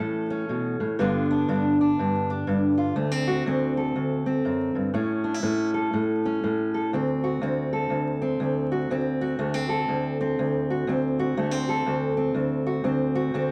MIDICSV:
0, 0, Header, 1, 2, 480
1, 0, Start_track
1, 0, Tempo, 494641
1, 952, Time_signature, 4, 2, 24, 8
1, 13116, End_track
2, 0, Start_track
2, 0, Title_t, "Steel-string acoustic guitar"
2, 0, Program_c, 0, 25
2, 0, Note_on_c, 0, 45, 71
2, 0, Note_on_c, 0, 52, 67
2, 0, Note_on_c, 0, 57, 59
2, 0, Note_on_c, 0, 61, 66
2, 0, Note_on_c, 0, 69, 61
2, 282, Note_off_c, 0, 61, 0
2, 294, Note_on_c, 0, 61, 57
2, 471, Note_off_c, 0, 45, 0
2, 477, Note_on_c, 0, 47, 55
2, 770, Note_off_c, 0, 47, 0
2, 777, Note_on_c, 0, 45, 57
2, 933, Note_off_c, 0, 61, 0
2, 933, Note_off_c, 0, 69, 0
2, 935, Note_off_c, 0, 52, 0
2, 938, Note_off_c, 0, 57, 0
2, 957, Note_off_c, 0, 45, 0
2, 960, Note_on_c, 0, 50, 65
2, 961, Note_on_c, 0, 43, 72
2, 972, Note_on_c, 0, 59, 61
2, 978, Note_on_c, 0, 62, 63
2, 983, Note_on_c, 0, 65, 66
2, 1263, Note_off_c, 0, 65, 0
2, 1268, Note_off_c, 0, 62, 0
2, 1268, Note_on_c, 0, 62, 64
2, 1429, Note_off_c, 0, 43, 0
2, 1440, Note_on_c, 0, 43, 76
2, 1446, Note_off_c, 0, 62, 0
2, 1446, Note_on_c, 0, 62, 64
2, 1743, Note_off_c, 0, 62, 0
2, 1754, Note_on_c, 0, 62, 59
2, 1916, Note_off_c, 0, 43, 0
2, 1933, Note_on_c, 0, 43, 68
2, 2222, Note_off_c, 0, 62, 0
2, 2233, Note_on_c, 0, 62, 59
2, 2387, Note_off_c, 0, 43, 0
2, 2399, Note_on_c, 0, 43, 74
2, 2694, Note_on_c, 0, 65, 57
2, 2853, Note_off_c, 0, 43, 0
2, 2853, Note_off_c, 0, 65, 0
2, 2860, Note_off_c, 0, 59, 0
2, 2863, Note_off_c, 0, 62, 0
2, 2870, Note_on_c, 0, 38, 70
2, 2871, Note_on_c, 0, 57, 60
2, 3023, Note_off_c, 0, 57, 0
2, 3023, Note_on_c, 0, 60, 55
2, 3178, Note_on_c, 0, 66, 66
2, 3348, Note_off_c, 0, 38, 0
2, 3353, Note_off_c, 0, 60, 0
2, 3360, Note_on_c, 0, 38, 81
2, 3369, Note_on_c, 0, 60, 65
2, 3653, Note_off_c, 0, 66, 0
2, 3659, Note_on_c, 0, 69, 57
2, 3827, Note_off_c, 0, 38, 0
2, 3839, Note_on_c, 0, 38, 71
2, 4124, Note_off_c, 0, 60, 0
2, 4135, Note_on_c, 0, 60, 55
2, 4313, Note_off_c, 0, 38, 0
2, 4317, Note_on_c, 0, 42, 64
2, 4606, Note_off_c, 0, 42, 0
2, 4610, Note_on_c, 0, 43, 53
2, 4774, Note_off_c, 0, 60, 0
2, 4791, Note_on_c, 0, 45, 76
2, 4793, Note_off_c, 0, 43, 0
2, 4796, Note_off_c, 0, 50, 0
2, 4797, Note_on_c, 0, 61, 64
2, 5081, Note_off_c, 0, 69, 0
2, 5085, Note_on_c, 0, 62, 55
2, 5185, Note_off_c, 0, 62, 0
2, 5185, Note_on_c, 0, 64, 48
2, 5255, Note_off_c, 0, 45, 0
2, 5262, Note_off_c, 0, 61, 0
2, 5267, Note_on_c, 0, 45, 80
2, 5274, Note_on_c, 0, 61, 62
2, 5567, Note_off_c, 0, 64, 0
2, 5571, Note_on_c, 0, 69, 59
2, 5750, Note_off_c, 0, 45, 0
2, 5760, Note_on_c, 0, 45, 68
2, 6049, Note_off_c, 0, 61, 0
2, 6069, Note_on_c, 0, 61, 54
2, 6236, Note_off_c, 0, 45, 0
2, 6246, Note_on_c, 0, 45, 65
2, 6529, Note_off_c, 0, 69, 0
2, 6543, Note_on_c, 0, 69, 60
2, 6698, Note_off_c, 0, 69, 0
2, 6701, Note_off_c, 0, 61, 0
2, 6719, Note_off_c, 0, 45, 0
2, 6725, Note_on_c, 0, 38, 73
2, 6733, Note_on_c, 0, 60, 57
2, 7022, Note_on_c, 0, 66, 54
2, 7191, Note_off_c, 0, 38, 0
2, 7195, Note_on_c, 0, 38, 79
2, 7205, Note_off_c, 0, 60, 0
2, 7209, Note_on_c, 0, 60, 65
2, 7495, Note_off_c, 0, 66, 0
2, 7499, Note_on_c, 0, 69, 59
2, 7662, Note_off_c, 0, 38, 0
2, 7666, Note_on_c, 0, 38, 67
2, 7969, Note_off_c, 0, 60, 0
2, 7973, Note_on_c, 0, 60, 62
2, 8147, Note_off_c, 0, 38, 0
2, 8151, Note_on_c, 0, 38, 72
2, 8454, Note_off_c, 0, 69, 0
2, 8458, Note_on_c, 0, 66, 58
2, 8637, Note_off_c, 0, 38, 0
2, 8641, Note_on_c, 0, 38, 75
2, 8644, Note_off_c, 0, 60, 0
2, 8648, Note_on_c, 0, 60, 65
2, 8677, Note_off_c, 0, 66, 0
2, 8940, Note_on_c, 0, 66, 64
2, 9105, Note_off_c, 0, 38, 0
2, 9106, Note_off_c, 0, 60, 0
2, 9109, Note_on_c, 0, 38, 74
2, 9110, Note_on_c, 0, 57, 63
2, 9257, Note_off_c, 0, 57, 0
2, 9257, Note_on_c, 0, 60, 50
2, 9399, Note_off_c, 0, 66, 0
2, 9403, Note_on_c, 0, 69, 60
2, 9587, Note_off_c, 0, 38, 0
2, 9591, Note_on_c, 0, 38, 75
2, 9886, Note_off_c, 0, 60, 0
2, 9904, Note_on_c, 0, 60, 60
2, 10078, Note_off_c, 0, 38, 0
2, 10082, Note_on_c, 0, 38, 75
2, 10383, Note_off_c, 0, 69, 0
2, 10386, Note_on_c, 0, 66, 57
2, 10547, Note_off_c, 0, 38, 0
2, 10551, Note_on_c, 0, 38, 79
2, 10562, Note_off_c, 0, 60, 0
2, 10566, Note_on_c, 0, 60, 63
2, 10595, Note_off_c, 0, 66, 0
2, 10863, Note_on_c, 0, 66, 65
2, 11032, Note_off_c, 0, 38, 0
2, 11035, Note_off_c, 0, 60, 0
2, 11035, Note_on_c, 0, 38, 78
2, 11039, Note_on_c, 0, 57, 59
2, 11172, Note_off_c, 0, 57, 0
2, 11172, Note_on_c, 0, 60, 54
2, 11338, Note_off_c, 0, 66, 0
2, 11342, Note_on_c, 0, 69, 60
2, 11508, Note_off_c, 0, 38, 0
2, 11512, Note_on_c, 0, 38, 75
2, 11798, Note_off_c, 0, 60, 0
2, 11809, Note_on_c, 0, 60, 59
2, 11967, Note_off_c, 0, 38, 0
2, 11978, Note_on_c, 0, 38, 73
2, 12286, Note_off_c, 0, 69, 0
2, 12290, Note_on_c, 0, 66, 54
2, 12447, Note_off_c, 0, 38, 0
2, 12452, Note_off_c, 0, 60, 0
2, 12452, Note_off_c, 0, 66, 0
2, 12459, Note_on_c, 0, 38, 78
2, 12464, Note_on_c, 0, 60, 62
2, 12764, Note_on_c, 0, 66, 69
2, 12933, Note_off_c, 0, 38, 0
2, 12941, Note_off_c, 0, 60, 0
2, 12944, Note_on_c, 0, 38, 78
2, 12952, Note_on_c, 0, 60, 67
2, 13116, Note_off_c, 0, 38, 0
2, 13116, Note_off_c, 0, 60, 0
2, 13116, Note_off_c, 0, 66, 0
2, 13116, End_track
0, 0, End_of_file